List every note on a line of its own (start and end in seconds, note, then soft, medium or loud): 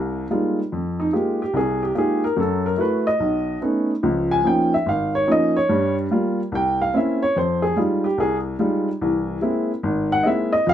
0.00 0.24 C2 medium
0.00 0.24 C3 medium
0.00 0.26 F5 medium
0.31 0.58 G3 soft
0.31 0.58 G#3 soft
0.31 0.58 A#3 soft
0.31 0.59 D#4 soft
0.31 0.58 F4 medium
0.72 1.07 F2 medium
1.00 1.12 D#4 medium
1.13 1.41 G#3 soft
1.13 1.41 A#3 soft
1.13 1.41 D#4 soft
1.13 1.41 F4 soft
1.13 1.41 G4 medium
1.42 1.55 G4 medium
1.53 1.89 C2 medium
1.53 1.90 C3 medium
1.53 1.81 G#4 medium
1.83 1.94 G4 medium
1.95 2.23 G#3 medium
1.95 2.23 A#3 soft
1.95 2.23 D#4 soft
1.95 2.23 F4 soft
1.95 2.24 G4 medium
1.95 2.23 G#4 medium
2.24 2.37 A#4 medium
2.36 2.73 F#2 medium
2.36 2.72 F#3 medium
2.36 2.64 A4 medium
2.66 2.79 A#4 medium
2.77 3.06 A3 medium
2.77 3.06 E4 soft
2.77 3.07 F#4 medium
2.77 3.06 B4 medium
3.07 3.58 D#5 medium
3.20 3.56 B1 medium
3.62 3.90 A3 soft
3.62 3.90 B3 soft
3.62 3.90 C#4 soft
3.62 3.90 D#4 medium
4.03 4.39 C#2 medium
4.03 4.39 F3 medium
4.31 4.45 G#5 medium
4.44 4.73 F3 medium
4.44 4.73 A#3 soft
4.44 4.73 C#4 soft
4.44 4.73 D#4 medium
4.44 4.72 G5 medium
4.74 4.87 E5 medium
4.86 5.22 G#1 medium
4.86 5.13 F5 medium
5.15 5.28 C#5 medium
5.27 5.56 F3 medium
5.27 5.56 A#3 soft
5.27 5.56 C#4 soft
5.27 5.56 D#4 medium
5.32 5.56 D#5 medium
5.56 5.94 C#5 medium
5.69 6.05 G2 medium
5.69 6.05 G3 medium
6.11 6.39 G3 medium
6.11 6.39 A#3 soft
6.11 6.39 F4 medium
6.52 6.88 C2 medium
6.52 6.80 G5 medium
6.82 6.94 F5 medium
6.94 7.22 A#3 medium
6.94 7.22 C4 soft
6.94 7.22 C#4 soft
6.94 7.22 E4 medium
6.94 7.21 E5 medium
7.22 7.35 C#5 medium
7.36 7.71 F2 medium
7.36 7.62 C5 medium
7.62 7.76 G#4 medium
7.76 8.05 G3 medium
7.76 8.05 G#3 soft
7.76 8.05 D#4 soft
7.76 8.05 F4 medium
8.04 8.18 G4 medium
8.18 8.54 C2 medium
8.18 8.36 G#4 medium
8.59 8.87 G3 medium
8.59 8.88 G#3 medium
8.59 8.88 D#4 soft
8.59 8.88 F4 medium
9.01 9.37 C2 medium
9.01 9.37 E3 medium
9.41 9.70 G#3 medium
9.41 9.70 A#3 medium
9.41 9.70 C4 soft
9.41 9.70 E4 medium
9.83 10.19 G#1 medium
10.12 10.25 F#5 medium
10.23 10.53 G#3 medium
10.23 10.53 A#3 medium
10.23 10.53 C4 soft
10.23 10.54 E4 medium
10.23 10.26 D#5 medium
10.23 10.52 E5 medium
10.53 10.66 D#5 medium
10.66 10.74 F2 medium
10.66 10.74 F3 medium
10.66 10.74 F5 loud